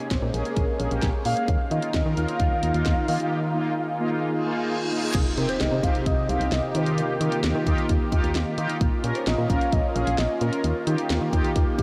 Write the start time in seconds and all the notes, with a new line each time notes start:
Already playing: G#3 A#3 C#4 C#5
0.11 A#1 C5, kick, snare, closed hi-hat
0.22 A#2
0.34 A#1 A#3 C#4 G#4 A#4, closed hi-hat
0.45 A#3 C#4 G#4, closed hi-hat
0.56 A#1, kick, closed hi-hat
0.80 A#1 A#3 C#4 G#4, closed hi-hat
0.91 A#1 A#3 C#4 G4, closed hi-hat
1.02 A#1, kick, snare, closed hi-hat
1.25 A#2 A#3 C#4 G#4 F5, open hi-hat
1.37 A#3 C#4 G#4, closed hi-hat
1.48 D#2 D#3 D#4 F4 A#4, kick, closed hi-hat
1.71 D#3 A#3 D#4 F4 D#5, closed hi-hat
1.82 closed hi-hat
1.94 D#2 D#5, kick, snare, closed hi-hat
2.06 D#3
2.17 D#2 A#3 D#4 F4 F5, closed hi-hat
2.28 A#3 D#4 F4, closed hi-hat
2.40 D#2, kick, closed hi-hat
2.63 D#2 A#3 D#4 F4, closed hi-hat
2.74 D#2 A#3 D#4 F4, closed hi-hat
2.86 D#2, kick, snare, closed hi-hat
3.08 D#3 A#3 D#4 F4, open hi-hat
3.20 A#3 D#4 G4, closed hi-hat
3.31 G#4
3.54 A#3 D#4 F4
4.00 A#3 D#4 F4
4.12 A#3 D#4 F4
4.23 reverse cymbal
4.46 A#3 D#4 F4
4.57 A#3 D#4 F4
4.92 A#3 D#4 F4
5.03 A#3 D#4 G#4
5.15 C2 C3 C4 D#4 G4, kick, closed hi-hat, crash, impact
5.37 C3 C4 D#4 G4 A#4, closed hi-hat
5.49 C5, closed hi-hat
5.60 C2 D#5, snare, closed hi-hat
5.72 C3
5.83 C2 C4 D#4 G4 F5, kick, closed hi-hat
5.95 closed hi-hat
6.06 C2 D#5, kick, closed hi-hat
6.29 C2 C4 D#4 G4 F5, closed hi-hat
6.40 C2, closed hi-hat
6.52 C2 D#5, snare, closed hi-hat
6.75 D#3 A#3 D#4 F4 G4 A#4, closed hi-hat
6.86 closed hi-hat
6.98 closed hi-hat
7.21 D#3 D#4 F4 G4, closed hi-hat
7.32 closed hi-hat
7.44 D#2, snare, closed hi-hat
7.55 D#3
7.66 D#2 D#4 F4 G4, kick, closed hi-hat
7.78 closed hi-hat
7.89 D#2, kick, closed hi-hat
8.12 D#2 D#4 F4 G4, kick, closed hi-hat
8.24 D#2, closed hi-hat
8.35 D#2, snare, closed hi-hat
8.58 D#3 D#4 F4 G4, closed hi-hat
8.69 closed hi-hat
8.81 A#1 A#3 C#4, kick, closed hi-hat
9.04 A#2 C#4 F4 A#4, closed hi-hat
9.15 C5, closed hi-hat
9.27 A#1 D#5, snare, closed hi-hat
9.38 A#2
9.50 A#1 C#4 F4 A#4 F5, kick, closed hi-hat
9.61 closed hi-hat
9.72 A#1 D#5, kick, closed hi-hat
9.95 A#1 C#4 F4 G#4 F5, closed hi-hat
10.07 A#1, closed hi-hat
10.18 A#1 D#5, snare, closed hi-hat
10.41 A#2 C#4 F4 A#4, closed hi-hat
10.53 closed hi-hat
10.64 D#2 D#3 A#3 G4, closed hi-hat
10.87 D#3 D#4 F4 G4, closed hi-hat
10.98 closed hi-hat
11.10 D#2, snare, closed hi-hat
11.21 D#3
11.33 D#2 D#4 F4 G4, kick, closed hi-hat
11.45 closed hi-hat
11.56 D#2, kick, closed hi-hat
11.79 D#2 D#4 F4 G4, kick, closed hi-hat